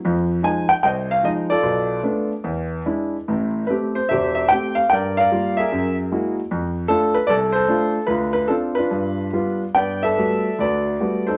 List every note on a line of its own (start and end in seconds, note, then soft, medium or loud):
0.05 0.39 F2 medium
0.05 0.38 F3 medium
0.43 0.71 F3 medium
0.43 0.71 G#3 medium
0.43 0.71 D#4 medium
0.43 0.71 G#5 loud
0.69 0.74 G5 loud
0.83 1.18 C2 medium
0.83 1.60 C5 medium
0.83 1.23 D#5 medium
0.83 0.89 G5 medium
1.11 1.24 F5 medium
1.23 1.51 F3 medium
1.23 1.51 G#3 soft
1.23 1.51 D#4 medium
1.23 1.30 D#5 medium
1.50 2.27 F4 medium
1.50 2.27 A4 medium
1.50 2.00 D5 medium
1.63 1.98 B1 medium
2.03 2.32 A3 soft
2.03 2.32 B3 soft
2.03 2.32 D4 medium
2.44 2.80 E2 medium
2.86 3.15 G#3 soft
2.86 3.15 D4 soft
2.86 3.15 E4 medium
3.28 3.64 A1 medium
3.28 3.64 A2 medium
3.67 3.98 A3 medium
3.67 3.99 C4 soft
3.67 3.99 G4 medium
3.67 3.73 B4 medium
3.95 4.10 C5 medium
4.09 4.46 E1 medium
4.09 4.51 G4 medium
4.09 4.89 C5 medium
4.09 4.33 E5 medium
4.35 4.51 E5 medium
4.49 4.80 A3 soft
4.49 4.80 C4 soft
4.49 4.80 G4 medium
4.49 4.75 G5 loud
4.75 4.91 F5 medium
4.90 5.27 G2 medium
4.90 5.19 A#4 medium
4.90 5.18 D5 medium
4.90 4.96 G5 medium
5.17 5.59 A#4 medium
5.17 5.69 D5 medium
5.17 5.59 F5 loud
5.32 5.60 G3 medium
5.32 5.60 A#3 soft
5.32 5.60 F4 medium
5.57 6.34 G#4 medium
5.57 6.35 A#4 medium
5.57 5.95 E5 medium
5.72 6.07 F#2 medium
6.12 6.39 G#3 medium
6.12 6.39 A#3 soft
6.12 6.39 E4 soft
6.12 6.39 F#4 medium
6.51 6.85 F2 medium
6.88 7.16 A3 medium
6.88 7.17 D4 medium
6.88 7.17 F4 medium
6.88 7.16 A4 medium
7.14 7.29 B4 medium
7.27 7.63 C2 medium
7.27 7.54 A4 medium
7.27 7.33 D5 loud
7.53 8.05 A4 medium
7.53 7.91 C5 loud
7.68 7.96 A3 medium
7.68 7.96 D4 medium
7.68 7.97 F4 medium
8.07 8.43 D2 medium
8.07 8.48 F4 medium
8.07 8.31 B4 medium
8.33 8.47 B4 medium
8.48 8.78 C4 medium
8.48 8.77 D4 medium
8.48 8.77 F4 medium
8.48 8.54 A4 medium
8.75 9.59 D4 medium
8.75 9.32 F4 medium
8.75 9.57 B4 medium
8.91 9.28 G2 medium
9.33 9.63 G3 medium
9.33 9.63 B3 soft
9.33 9.64 F4 medium
9.75 10.12 G2 medium
9.75 10.12 B3 medium
9.75 10.03 B4 medium
9.75 10.56 D5 medium
9.75 10.01 G5 medium
10.03 10.83 A4 medium
10.03 10.60 B4 medium
10.03 10.61 E5 medium
10.18 10.47 G3 soft
10.18 10.47 A3 soft
10.18 10.47 B3 soft
10.18 10.47 F#4 soft
10.59 10.95 D2 medium
10.59 11.00 F#4 medium
10.59 11.37 B4 medium
10.59 11.29 D5 medium
11.00 11.29 G3 soft
11.00 11.28 A3 soft
11.00 11.29 B3 soft
11.00 11.29 F#4 medium
11.27 11.37 D#4 medium
11.27 11.37 A4 medium
11.27 11.37 C5 medium